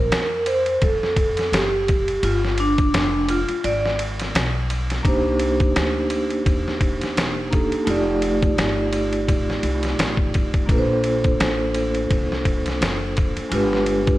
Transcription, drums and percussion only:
0.12 snare, hi-hat pedal, ride
0.46 ride
0.66 ride
0.82 kick, ride
1.03 snare
1.16 kick, ride
1.37 snare, ride
1.53 snare, hi-hat pedal, ride
1.88 kick, ride
2.08 ride
2.23 ride
2.45 snare
2.58 ride
2.78 kick, ride
2.94 snare, hi-hat pedal, ride
3.29 ride
3.49 ride
3.64 ride
3.86 snare
3.99 ride
4.20 snare, ride
4.35 snare, hi-hat pedal, ride
4.70 ride
4.90 snare, ride
5.05 kick, ride
5.39 ride
5.60 kick, ride
5.76 snare, hi-hat pedal, ride
6.10 ride
6.30 ride
6.46 kick, ride
6.68 snare
6.81 kick, ride
7.01 snare, ride
7.17 snare, hi-hat pedal, ride
7.53 kick, ride
7.72 ride
7.87 ride
8.22 ride
8.43 kick, ride
8.58 snare, hi-hat pedal, ride
8.93 ride
9.13 ride
9.28 kick, ride
9.50 snare
9.63 ride
9.83 snare, ride
9.99 snare, hi-hat pedal, ride
10.17 kick
10.34 kick, ride
10.54 kick, ride
10.69 kick, ride
11.04 ride
11.24 kick, ride
11.40 snare, hi-hat pedal, ride
11.74 ride
11.95 ride
12.11 kick, ride
12.32 snare
12.45 kick, ride
12.66 snare, ride
12.82 snare, hi-hat pedal, ride
13.17 kick, ride
13.37 ride
13.52 ride
13.73 snare
13.86 ride
14.07 kick, ride

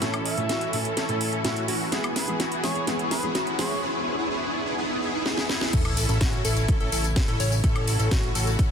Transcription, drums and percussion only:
0.02 snare, closed hi-hat
0.14 closed hi-hat, high woodblock
0.26 open hi-hat
0.37 closed hi-hat
0.49 snare, closed hi-hat
0.61 closed hi-hat
0.73 open hi-hat
0.85 closed hi-hat
0.97 snare, closed hi-hat
1.09 closed hi-hat
1.21 open hi-hat
1.33 closed hi-hat
1.45 snare, closed hi-hat
1.56 closed hi-hat
1.68 open hi-hat
1.92 snare, closed hi-hat
2.04 closed hi-hat, high woodblock
2.16 snare, open hi-hat
2.28 closed hi-hat
2.40 snare, closed hi-hat
2.52 closed hi-hat
2.64 snare, open hi-hat
2.76 closed hi-hat
2.87 snare, closed hi-hat
2.99 closed hi-hat
3.11 snare, open hi-hat
3.23 closed hi-hat
3.35 snare, closed hi-hat
3.47 closed hi-hat
3.59 snare, open hi-hat
5.26 snare
5.37 snare
5.49 snare
5.61 snare
5.73 kick, closed hi-hat, crash, tambourine
5.85 closed hi-hat, high woodblock
5.97 open hi-hat, tambourine
6.09 closed hi-hat, tambourine
6.21 kick, snare, closed hi-hat, tambourine
6.33 closed hi-hat
6.45 open hi-hat, tambourine
6.57 closed hi-hat, tambourine
6.68 kick, closed hi-hat, tambourine
6.80 closed hi-hat
6.92 open hi-hat, tambourine
7.04 closed hi-hat, tambourine
7.16 kick, snare, closed hi-hat
7.28 closed hi-hat
7.40 open hi-hat, tambourine
7.52 tambourine
7.64 kick, closed hi-hat, tambourine
7.76 closed hi-hat, high woodblock
7.88 open hi-hat, tambourine
7.99 closed hi-hat, tambourine
8.11 kick, snare, closed hi-hat, tambourine
8.23 closed hi-hat
8.35 open hi-hat, tambourine
8.47 closed hi-hat, tambourine
8.59 kick, closed hi-hat, tambourine

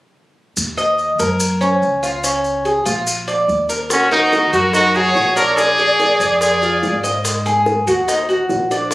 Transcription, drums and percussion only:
0.57 maracas
0.78 maracas
0.99 maracas
1.19 maracas
1.40 maracas
1.61 maracas
1.82 maracas
2.03 maracas
2.24 maracas
2.44 maracas
2.65 maracas
2.86 maracas
3.07 maracas
3.28 maracas
3.49 maracas
3.70 maracas
3.90 high bongo, maracas
4.12 high bongo, maracas
4.33 high bongo, maracas
4.53 high bongo, maracas
4.73 high bongo, maracas
4.95 maracas
5.16 high bongo, low bongo, maracas
5.37 high bongo, maracas
5.57 high bongo, maracas
5.79 high bongo, maracas
6.00 high bongo, maracas
6.20 high bongo, maracas
6.41 high bongo, maracas
6.62 maracas
6.83 high bongo, low bongo, maracas
7.04 high bongo, maracas
7.25 high bongo, maracas
7.46 high bongo, maracas
7.66 high bongo, maracas
7.87 high bongo, maracas
8.08 high bongo, maracas
8.29 maracas
8.49 high bongo, low bongo, maracas
8.71 high bongo, maracas
8.91 high bongo

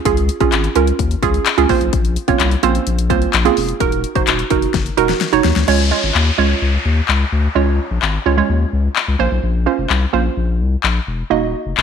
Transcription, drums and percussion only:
0.05 kick, closed hi-hat
0.17 closed hi-hat
0.29 closed hi-hat
0.40 kick, closed hi-hat
0.52 clap, closed hi-hat
0.64 closed hi-hat
0.75 closed hi-hat
0.87 closed hi-hat
0.99 kick, closed hi-hat
1.11 closed hi-hat
1.23 kick, closed hi-hat
1.34 closed hi-hat
1.46 clap, closed hi-hat
1.58 closed hi-hat
1.69 kick, open hi-hat
1.81 closed hi-hat
1.93 kick, closed hi-hat
2.05 closed hi-hat
2.16 closed hi-hat
2.28 kick, closed hi-hat
2.40 clap, closed hi-hat
2.51 closed hi-hat
2.63 closed hi-hat
2.75 closed hi-hat
2.87 closed hi-hat
2.99 closed hi-hat
3.10 kick, closed hi-hat
3.22 closed hi-hat
3.33 clap, closed hi-hat
3.45 closed hi-hat
3.57 open hi-hat
3.69 closed hi-hat
3.80 kick, closed hi-hat
3.92 closed hi-hat
4.04 closed hi-hat
4.15 kick, closed hi-hat
4.27 clap, closed hi-hat
4.39 closed hi-hat
4.50 kick, closed hi-hat
4.62 closed hi-hat
4.74 kick, snare, closed hi-hat
4.86 closed hi-hat
4.98 closed hi-hat
5.09 snare, closed hi-hat
5.21 snare, closed hi-hat
5.33 closed hi-hat
5.44 snare, closed hi-hat
5.56 snare, closed hi-hat
5.68 crash
6.15 clap
7.08 clap
8.02 clap
8.96 clap
9.90 clap
10.83 clap
11.77 clap

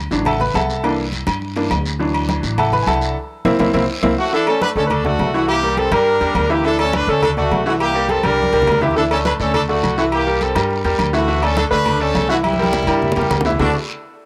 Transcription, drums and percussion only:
0.11 high conga, short guiro
0.25 high conga, low conga, low agogo, long guiro
0.40 high conga, low conga
0.54 high conga, low timbale, low agogo, short guiro
0.69 high conga, short guiro
0.83 high conga, low agogo, long guiro
0.97 high conga
1.12 high conga, low agogo, short guiro
1.27 high conga, low agogo, short guiro
1.41 high conga, long guiro
1.56 high conga, low agogo
1.71 high conga, low timbale, low agogo, short guiro
1.85 high conga, short guiro
2.00 high conga, long guiro
2.14 high conga, low agogo
2.29 high conga, low agogo, short guiro
2.43 high conga, short guiro
2.58 high conga, low conga, low agogo, long guiro
2.72 high conga, low conga
2.87 high conga, low agogo, short guiro
3.01 high conga, short guiro
3.45 high conga, high timbale, long guiro
3.59 high conga, high timbale, long guiro
3.74 high conga, high timbale, long guiro
4.03 high conga, high timbale, long guiro
4.33 high conga
4.47 high conga, low agogo
4.61 high conga, low agogo
4.76 high conga
4.90 high conga, low conga, low agogo
5.05 high conga, low conga
5.19 high conga, low timbale, low agogo
5.34 high conga
5.48 high conga, low agogo
5.63 high conga
5.77 high conga, low agogo
5.92 high conga, low agogo
6.06 high conga
6.21 high conga, low agogo
6.35 high conga, low timbale, low agogo
6.50 high conga
6.64 high conga
6.79 high conga, low agogo
6.93 high conga, low agogo
7.08 high conga
7.22 high conga, low conga, low agogo
7.37 high conga, low conga
7.51 high conga, low timbale, low agogo
7.65 high conga
7.80 high conga, low agogo
7.94 high conga
8.09 high conga, low agogo
8.23 high conga, low agogo
8.42 high conga
8.53 low agogo
8.62 low conga
8.67 low timbale, low agogo
8.72 low conga
8.81 low conga
8.91 low conga
8.96 high conga, long guiro
9.10 high conga, low agogo
9.25 high conga, low agogo, short guiro
9.40 high conga, short guiro
9.54 high conga, low conga, low agogo, long guiro
9.69 high conga
9.83 high conga, low agogo, short guiro
9.98 high conga, short guiro
10.12 high conga, low agogo, long guiro
10.27 high conga
10.41 high conga, low agogo, short guiro
10.55 high conga, low agogo, short guiro
10.70 high conga, long guiro
10.84 high conga, low agogo
10.99 high conga, low agogo, short guiro
11.14 high conga, short guiro
11.28 high conga, long guiro
11.43 high conga, low agogo
11.57 high conga, low agogo, short guiro
11.71 high conga, short guiro
11.86 high conga, low conga, low agogo, long guiro
12.15 high conga, low timbale, low agogo, short guiro
12.29 high conga, short guiro
12.44 high conga, low agogo, long guiro
12.53 high conga
12.63 high conga
12.72 low conga, low agogo, short guiro
12.83 low conga
12.87 high timbale, low agogo, short guiro
13.02 low conga, long guiro
13.12 low conga
13.16 low timbale, low agogo
13.21 low conga
13.30 low conga, low timbale, low agogo, short guiro
13.41 low conga
13.45 low timbale, short guiro
13.50 low conga
13.59 low conga, low timbale, long guiro

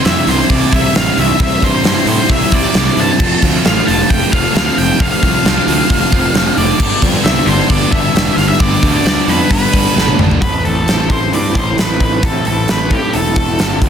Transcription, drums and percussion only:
0.05 snare, open hi-hat
0.27 open hi-hat
0.50 kick, open hi-hat
0.73 kick, open hi-hat
0.95 snare, open hi-hat
1.18 open hi-hat
1.40 kick, open hi-hat
1.62 kick, open hi-hat
1.84 snare, open hi-hat
2.07 open hi-hat
2.29 kick, open hi-hat
2.52 kick, open hi-hat
2.74 snare, open hi-hat
2.97 open hi-hat
3.20 kick, crash
3.42 kick, open hi-hat
3.65 snare, open hi-hat
3.88 open hi-hat
4.10 kick, open hi-hat
4.33 kick, open hi-hat
4.55 snare, open hi-hat
4.78 open hi-hat
5.00 kick, open hi-hat
5.23 kick, open hi-hat
5.45 snare, open hi-hat
5.68 open hi-hat
5.90 kick, open hi-hat
6.12 kick, open hi-hat
6.34 snare, open hi-hat
6.57 open hi-hat
6.80 kick, crash
7.02 kick, open hi-hat
7.25 snare, open hi-hat
7.47 open hi-hat
7.70 kick, open hi-hat
7.92 kick, open hi-hat
8.16 snare, open hi-hat
8.38 open hi-hat
8.60 kick, open hi-hat
8.83 kick, open hi-hat
9.06 snare, open hi-hat
9.28 open hi-hat
9.51 kick, open hi-hat
9.74 kick, open hi-hat
9.98 snare
10.08 high tom
10.19 mid tom
10.31 floor tom
10.42 kick, open hi-hat
10.65 open hi-hat
10.88 snare, open hi-hat
11.10 kick, open hi-hat
11.33 open hi-hat
11.55 kick, open hi-hat
11.78 snare, open hi-hat
12.00 kick, open hi-hat
12.23 kick, open hi-hat
12.45 open hi-hat
12.68 snare, open hi-hat
12.91 kick, open hi-hat
13.13 open hi-hat
13.36 kick, open hi-hat
13.59 snare, open hi-hat
13.82 kick, open hi-hat

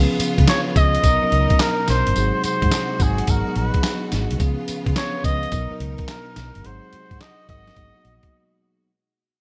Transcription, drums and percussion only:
0.20 closed hi-hat, tambourine
0.38 kick, closed hi-hat
0.48 snare, clap, closed hi-hat, tambourine
0.76 kick, closed hi-hat, tambourine
0.95 closed hi-hat
1.04 kick, closed hi-hat, tambourine
1.32 closed hi-hat
1.50 kick, closed hi-hat
1.60 snare, clap, closed hi-hat, tambourine
1.88 snare, closed hi-hat, tambourine
2.07 closed hi-hat
2.16 closed hi-hat, tambourine
2.44 closed hi-hat, tambourine
2.62 kick, closed hi-hat
2.72 snare, clap, closed hi-hat, tambourine
3.00 kick, closed hi-hat, tambourine
3.18 closed hi-hat
3.27 kick, closed hi-hat, tambourine
3.56 closed hi-hat
3.74 kick, closed hi-hat
3.83 snare, clap, closed hi-hat, tambourine
4.12 snare, closed hi-hat, tambourine
4.31 closed hi-hat
4.40 kick, closed hi-hat, tambourine
4.68 closed hi-hat, tambourine
4.86 kick, closed hi-hat
4.96 snare, clap, closed hi-hat, tambourine
5.24 kick, closed hi-hat, tambourine
5.43 closed hi-hat
5.52 kick, closed hi-hat, tambourine
5.80 closed hi-hat
5.98 kick, closed hi-hat
6.08 snare, clap, closed hi-hat, tambourine
6.36 snare, closed hi-hat, tambourine
6.55 closed hi-hat
6.64 closed hi-hat
6.93 closed hi-hat
7.11 kick, closed hi-hat
7.21 snare, clap, closed hi-hat
7.49 kick, closed hi-hat
7.67 snare, closed hi-hat
7.76 kick, closed hi-hat
8.05 closed hi-hat
8.23 kick, closed hi-hat

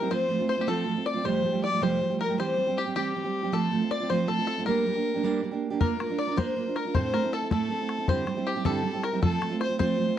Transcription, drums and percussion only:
5.81 bodhran
6.00 bodhran
6.38 bodhran
6.76 bodhran
6.95 bodhran
7.14 bodhran
7.51 bodhran
7.89 bodhran
8.08 bodhran
8.27 bodhran
8.65 bodhran
9.03 bodhran
9.23 bodhran
9.42 bodhran
9.61 bodhran
9.80 bodhran

